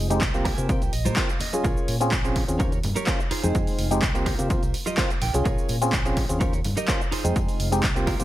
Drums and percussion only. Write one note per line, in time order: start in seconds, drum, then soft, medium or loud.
0.10 closed hi-hat medium
0.10 tambourine soft
0.10 shaker medium
0.21 kick loud
0.21 clap loud
0.21 closed hi-hat medium
0.21 tambourine medium
0.21 shaker medium
0.34 closed hi-hat soft
0.34 tambourine soft
0.34 shaker soft
0.45 kick medium
0.45 open hi-hat loud
0.45 tambourine medium
0.57 closed hi-hat medium
0.57 tambourine soft
0.57 low conga medium
0.57 shaker medium
0.69 kick loud
0.69 closed hi-hat medium
0.69 tambourine medium
0.69 shaker medium
0.82 closed hi-hat soft
0.82 tambourine soft
0.82 shaker soft
0.93 open hi-hat loud
0.93 tambourine medium
1.05 closed hi-hat medium
1.05 tambourine soft
1.05 high conga loud
1.05 shaker medium
1.16 kick loud
1.16 clap loud
1.16 closed hi-hat medium
1.16 tambourine soft
1.16 low conga medium
1.16 shaker medium
1.29 closed hi-hat soft
1.29 shaker soft
1.40 open hi-hat loud
1.40 tambourine medium
1.40 low conga medium
1.53 closed hi-hat medium
1.53 tambourine soft
1.53 high conga medium
1.53 shaker medium
1.64 kick loud
1.64 closed hi-hat medium
1.64 tambourine medium
1.64 shaker medium
1.76 tambourine soft
1.76 shaker soft
1.88 open hi-hat loud
1.88 tambourine medium
2.01 closed hi-hat medium
2.01 tambourine soft
2.01 shaker medium
2.12 kick loud
2.12 clap loud
2.12 closed hi-hat medium
2.12 shaker medium
2.24 closed hi-hat soft
2.24 tambourine soft
2.24 shaker soft
2.36 kick medium
2.36 open hi-hat loud
2.36 tambourine medium
2.48 closed hi-hat medium
2.48 tambourine soft
2.48 shaker medium
2.60 kick loud
2.60 closed hi-hat medium
2.60 tambourine soft
2.60 shaker medium
2.72 closed hi-hat soft
2.72 tambourine soft
2.72 shaker soft
2.83 open hi-hat loud
2.83 tambourine medium
2.83 low conga medium
2.96 closed hi-hat medium
2.96 tambourine soft
2.96 high conga loud
2.96 shaker medium
3.07 kick loud
3.07 clap loud
3.07 closed hi-hat medium
3.07 shaker medium
3.20 shaker soft
3.31 open hi-hat loud
3.31 tambourine medium
3.44 closed hi-hat medium
3.44 tambourine soft
3.44 high conga medium
3.44 shaker medium
3.55 kick loud
3.55 closed hi-hat medium
3.55 tambourine medium
3.55 shaker medium
3.67 open hi-hat medium
3.67 tambourine soft
3.67 shaker soft
3.79 open hi-hat loud
3.79 tambourine medium
3.91 closed hi-hat medium
3.91 tambourine soft
3.91 shaker medium
4.02 kick loud
4.02 clap loud
4.02 closed hi-hat medium
4.02 tambourine medium
4.02 shaker medium
4.15 closed hi-hat soft
4.15 tambourine soft
4.15 shaker soft
4.26 kick medium
4.26 open hi-hat loud
4.26 tambourine medium
4.39 closed hi-hat medium
4.39 tambourine soft
4.39 low conga medium
4.39 shaker medium
4.50 kick loud
4.50 closed hi-hat medium
4.50 tambourine soft
4.50 shaker medium
4.63 closed hi-hat soft
4.63 tambourine soft
4.63 shaker soft
4.74 open hi-hat loud
4.74 tambourine medium
4.87 closed hi-hat medium
4.87 tambourine soft
4.87 high conga medium
4.87 shaker medium
4.97 kick loud
4.97 clap loud
4.97 closed hi-hat medium
4.97 tambourine soft
4.97 low conga medium
4.97 shaker medium
5.10 closed hi-hat soft
5.10 shaker soft
5.22 open hi-hat loud
5.22 tambourine loud
5.22 low conga medium
5.34 closed hi-hat medium
5.34 tambourine soft
5.34 high conga medium
5.34 shaker medium
5.46 kick loud
5.46 closed hi-hat medium
5.46 tambourine medium
5.46 shaker medium
5.58 tambourine soft
5.58 shaker soft
5.68 open hi-hat loud
5.68 tambourine loud
5.82 closed hi-hat medium
5.82 tambourine soft
5.82 shaker medium
5.93 kick loud
5.93 clap loud
5.93 closed hi-hat medium
5.93 tambourine medium
5.93 shaker medium
6.06 closed hi-hat soft
6.06 tambourine soft
6.06 shaker soft
6.17 kick medium
6.17 open hi-hat loud
6.17 tambourine loud
6.29 closed hi-hat medium
6.29 tambourine soft
6.29 shaker medium
6.41 kick loud
6.41 closed hi-hat medium
6.41 tambourine medium
6.41 shaker medium
6.52 closed hi-hat soft
6.52 tambourine soft
6.52 shaker soft
6.65 open hi-hat loud
6.65 tambourine loud
6.65 low conga medium
6.77 closed hi-hat medium
6.77 tambourine soft
6.77 high conga medium
6.77 shaker medium
6.88 kick loud
6.88 clap loud
6.88 closed hi-hat medium
6.88 shaker medium
7.01 shaker soft
7.12 open hi-hat loud
7.12 tambourine loud
7.25 closed hi-hat medium
7.25 tambourine soft
7.25 high conga medium
7.25 shaker medium
7.36 kick loud
7.36 closed hi-hat medium
7.36 tambourine medium
7.36 shaker medium
7.49 open hi-hat medium
7.49 tambourine soft
7.49 shaker soft
7.60 open hi-hat loud
7.60 tambourine loud
7.72 closed hi-hat medium
7.72 tambourine soft
7.72 shaker medium
7.83 kick loud
7.83 clap loud
7.83 closed hi-hat medium
7.83 tambourine medium
7.83 shaker medium
7.96 closed hi-hat soft
7.96 tambourine soft
7.96 shaker soft
8.07 kick medium
8.07 open hi-hat loud
8.07 tambourine medium
8.20 closed hi-hat medium
8.20 tambourine soft
8.20 high conga medium
8.20 low conga medium
8.20 shaker medium